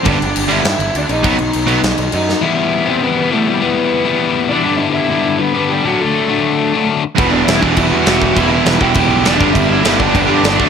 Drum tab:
CC |xxxxxxxx|xxxxxxx-|--------|--------|
SD |----o---|----o--o|--------|--------|
BD |o-------|o-------|--------|--------|

CC |--------|--------|x-x-x-x-|x-x-x-x-|
SD |--------|--------|--o---o-|--o---o-|
BD |--------|--------|o--oo--o|o--oo--o|

CC |x-x-x-x-|
SD |--o---o-|
BD |o--oo--o|